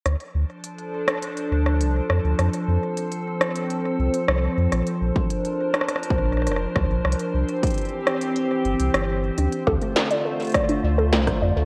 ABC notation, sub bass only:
X:1
M:4/4
L:1/16
Q:1/4=103
K:Dm
V:1 name="Sub bass" clef=bass
D,, z D,, z6 z D,,2 C,, z F,, D,, | F,, z F,, z8 C,, z C,, z F,, | B,,, z B,,, z6 z B,,,2 F,,, z D,, B,,, | C,, z C,, z8 G,,, C,, G,,,3 |
D,, z D,, z6 z D,,2 C,, z F,, D,, |]